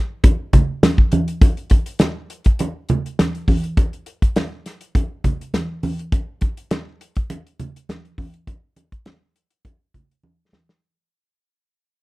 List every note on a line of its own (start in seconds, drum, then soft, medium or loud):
0.24 kick loud
0.24 closed hi-hat loud
0.24 muted conga medium
0.53 kick medium
0.53 closed hi-hat medium
0.53 muted conga soft
0.53 low conga medium
0.83 snare loud
0.83 closed hi-hat loud
0.83 high conga medium
0.98 kick medium
1.12 closed hi-hat medium
1.12 high conga medium
1.28 closed hi-hat soft
1.41 kick loud
1.41 closed hi-hat medium
1.41 muted conga soft
1.57 closed hi-hat soft
1.70 kick medium
1.70 closed hi-hat medium
1.70 muted conga soft
1.86 closed hi-hat medium
1.99 snare loud
1.99 closed hi-hat loud
1.99 high conga medium
2.30 closed hi-hat medium
2.44 kick medium
2.44 closed hi-hat soft
2.59 closed hi-hat medium
2.59 muted conga medium
2.89 closed hi-hat medium
2.89 muted conga soft
2.89 low conga medium
3.06 closed hi-hat soft
3.19 snare loud
3.19 closed hi-hat loud
3.19 high conga medium
3.35 closed hi-hat soft
3.48 kick medium
3.48 open hi-hat medium
3.48 high conga medium
3.64 closed hi-hat medium
3.77 kick loud
3.77 closed hi-hat medium
3.77 muted conga medium
3.93 closed hi-hat soft
4.06 closed hi-hat medium
4.22 kick medium
4.22 closed hi-hat medium
4.36 snare loud
4.36 closed hi-hat medium
4.36 high conga medium
4.66 snare soft
4.66 closed hi-hat medium
4.81 closed hi-hat soft
4.95 kick loud
4.95 closed hi-hat medium
4.95 muted conga medium
5.24 kick medium
5.24 closed hi-hat medium
5.24 muted conga soft
5.24 low conga medium
5.41 closed hi-hat soft
5.54 snare loud
5.54 closed hi-hat loud
5.54 high conga medium
5.83 open hi-hat medium
5.83 high conga medium
5.99 closed hi-hat soft
6.12 kick loud
6.12 closed hi-hat medium
6.12 muted conga soft
6.41 kick medium
6.41 closed hi-hat medium
6.41 muted conga soft
6.57 closed hi-hat medium
6.71 snare loud
6.71 closed hi-hat medium
6.71 high conga medium
7.01 closed hi-hat medium
7.16 kick medium
7.16 closed hi-hat soft
7.30 closed hi-hat medium
7.30 muted conga soft
7.47 closed hi-hat soft
7.60 closed hi-hat medium
7.60 muted conga soft
7.60 low conga medium
7.76 closed hi-hat soft
7.89 snare loud
7.89 closed hi-hat medium
7.89 high conga medium
8.05 closed hi-hat soft
8.18 kick medium
8.18 open hi-hat medium
8.18 high conga medium
8.34 closed hi-hat soft
8.47 kick loud
8.47 closed hi-hat medium
8.47 muted conga soft
8.76 closed hi-hat medium
8.76 muted conga soft
8.92 kick medium
8.92 closed hi-hat soft
9.06 snare loud
9.06 closed hi-hat medium
9.06 high conga medium
9.36 closed hi-hat medium
9.51 closed hi-hat soft
9.65 kick loud
9.65 closed hi-hat medium
9.65 muted conga medium
9.94 kick medium
9.94 closed hi-hat medium
9.94 muted conga soft
9.94 low conga medium
10.11 closed hi-hat soft
10.23 high conga medium
10.53 snare medium
10.53 high conga medium
10.69 snare medium